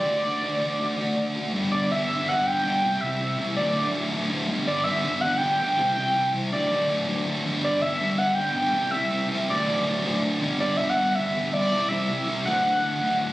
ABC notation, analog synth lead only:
X:1
M:4/4
L:1/16
Q:1/4=162
K:G
V:1 name="Analog synth lead"
d12- d2 z2 | z2 d2 e4 f2 g6 | e4 z2 d4 z6 | z2 d2 e4 f2 g6 |
g4 z2 d4 z6 | z2 d2 e4 f2 g6 | e4 z2 d4 z6 | z2 d2 e f3 e4 d d3 |
e4 z2 f8 z2 |]